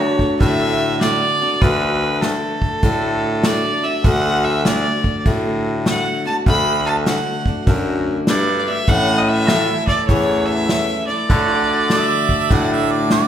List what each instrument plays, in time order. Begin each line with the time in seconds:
Already playing: steel-string acoustic guitar D3 A3 D4 F#4, pedal steel guitar D4 B4, fiddle C#5
0.00 pedal steel guitar F#4
0.06 pedal steel guitar A4
0.19 steel-string acoustic guitar A3 D4 F#4, kick
0.40 baritone saxophone A2, steel-string acoustic guitar D3 A3 D4 F#4, fiddle E5, kick, open hi-hat
1.01 steel-string acoustic guitar D3 A3 D4 F#4, fiddle D5, snare, open hi-hat
1.42 steel-string acoustic guitar A3 D4 F#4
1.61 baritone saxophone D2, steel-string acoustic guitar D3 A3 D4 F#4, fiddle B4, kick, open hi-hat
2.22 steel-string acoustic guitar D3 A3 D4 F#4, fiddle A4, snare, open hi-hat
2.62 kick
2.83 baritone saxophone A2, steel-string acoustic guitar D3 A3 D4 F#4, kick, open hi-hat
3.43 steel-string acoustic guitar D3 A3 D4 F#4, fiddle D5, snare, open hi-hat
3.83 steel-string acoustic guitar A3 D4 F#4, fiddle E5
4.04 baritone saxophone D2, steel-string acoustic guitar D3 A3 D4 F#4, fiddle F#5, kick, open hi-hat
4.44 fiddle E5
4.65 steel-string acoustic guitar D3 A3 D4 F#4, fiddle D5, snare, open hi-hat
5.04 kick
5.26 baritone saxophone A2, steel-string acoustic guitar D3 A3 D4 F#4, kick, open hi-hat
5.86 steel-string acoustic guitar D3 A3 D4 F#4, fiddle F#5, snare, open hi-hat
6.26 steel-string acoustic guitar A3 D4 F#4, fiddle A5
6.46 baritone saxophone D2, steel-string acoustic guitar D3 A3 D4 F#4, fiddle B5, kick, open hi-hat
6.86 fiddle A5
7.06 steel-string acoustic guitar D3 A3 D4 F#4, fiddle F#5, snare, open hi-hat
7.46 steel-string acoustic guitar A3 D4 F#4, kick
7.67 baritone saxophone F#2, steel-string acoustic guitar D3 A3 D4 F#4, kick, open hi-hat
8.27 baritone saxophone G2, steel-string acoustic guitar D3 A3 D4 F#4, fiddle D5, snare, open hi-hat
8.59 fiddle D5
8.67 steel-string acoustic guitar A3 D4 F#4, fiddle E5
8.87 baritone saxophone A2, steel-string acoustic guitar A2 E3 A3 C#4 E4, fiddle F#5, kick, open hi-hat
9.18 fiddle D#5
9.28 fiddle E5
9.47 steel-string acoustic guitar E3 A3 E4, pedal steel guitar F#4 A4 F5, snare, open hi-hat
9.70 pedal steel guitar E4 E5
9.87 fiddle D5, kick
10.07 baritone saxophone E2, steel-string acoustic guitar A2 E3 A3 C#4 E4, fiddle C#5, kick, open hi-hat
10.46 fiddle E5
10.69 steel-string acoustic guitar E3 A3 C#4 E4, snare, open hi-hat
11.07 steel-string acoustic guitar E4, fiddle D5
11.11 steel-string acoustic guitar A3
11.30 baritone saxophone D3, steel-string acoustic guitar D3 A3 D4 F#4, pedal steel guitar E4 A4 C#5, kick, open hi-hat
11.53 pedal steel guitar F#4 D5
11.90 steel-string acoustic guitar D3 A3 D4 F#4, harmonica E5, snare, open hi-hat
12.29 kick
12.50 baritone saxophone A2, steel-string acoustic guitar D3 A3 D4 F#4, harmonica F#5, kick, open hi-hat
12.73 harmonica E5
12.91 harmonica D5
13.10 steel-string acoustic guitar D3 A3 D4 F#4, harmonica D5, snare, open hi-hat